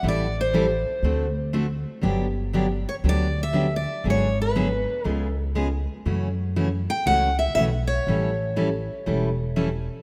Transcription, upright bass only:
X:1
M:4/4
L:1/8
Q:"Swing" 1/4=120
K:Amix
V:1 name="Upright bass" clef=bass
A,,,4 D,,4 | G,,,4 D,,4 | ^G,,,4 C,,4 | F,,4 C,,2 B,,,2 |
A,,,4 E,,,4 |]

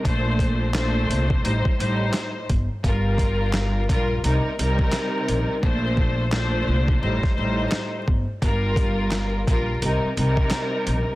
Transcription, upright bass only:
X:1
M:4/4
L:1/16
Q:"Swing 16ths" 1/4=86
K:Gm
V:1 name="Upright bass" clef=bass
B,,,6 C,,2 A,,, z A,,,2 z2 G,,, z | G,,,6 B,,,2 C,, z C,,2 z2 B,,, z | B,,,6 C,,2 A,,, z A,,,2 z2 G,,, z | G,,,6 B,,,2 C,, z C,,2 z2 B,,, z |]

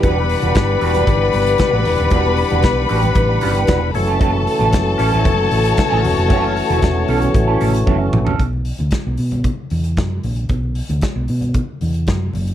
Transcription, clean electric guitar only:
X:1
M:4/4
L:1/16
Q:1/4=115
K:Bm
V:1 name="Clean electric guitar"
[G,DF] z2 [G,DF] z2 [G,DF] [G,DF] z4 z [G,DF] z2 | [G,DF]2 z [G,DF] z2 [G,DF] z3 [G,DF]2 [G,DF] z2 [CEA] | [CEA] z2 [CEA] z2 [CEA] [CEA] z4 z [CEA]2 z | [CEA]2 z [CEA] z2 [CEA] z2 [CEA] [CEA] z [CEA] z2 [CEA] |
z16 | z16 |]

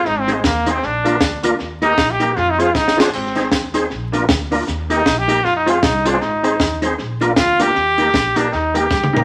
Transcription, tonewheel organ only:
X:1
M:4/4
L:1/8
Q:"Swing" 1/4=156
K:Eb
V:1 name="Tonewheel organ"
z [CEAc] [Ac] [CEAc] z [B,DFB] z [B,DFB] | z [B,EGB] z [B,EGB] [Ac] [CFAc] z [CFAc] | z [CEAc] [Ac] [CEAc] z [B,DFB] z [B,DFB] | z [B,EGB] z [B,EGB] [Ac] [CFAc] z [CFAc] |
z [CEAc] [Ac] [CEAc] z [B,DFB] z [B,DFB] | z [B,EGB] z [B,EGB] [GB] [B,EGB] z [B,EGB] |]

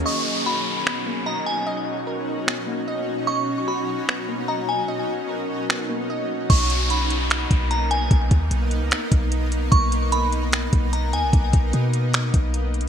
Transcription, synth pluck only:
X:1
M:4/4
L:1/8
Q:1/4=149
K:B
V:1 name="Synth pluck"
d2 F2 B, A, d2 | d2 A2 B, A, d2 | d2 F2 B, A, d2 | d2 A2 B, A, d2 |
z8 | z8 | z8 | z8 |]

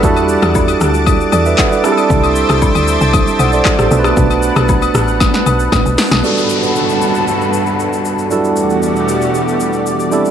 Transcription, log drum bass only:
X:1
M:4/4
L:1/16
Q:1/4=116
K:Em
V:1 name="Log drum bass" clef=bass
E,,3 E,,3 D,,4 E,,2 z4 | C,,3 C,,2 D,,2 C,,2 z B,,,2 z A,,, B,,,2 | B,,,3 B,,,3 A,,,4 B,,,2 A,,, B,,, z B,,, | z16 |
z16 |]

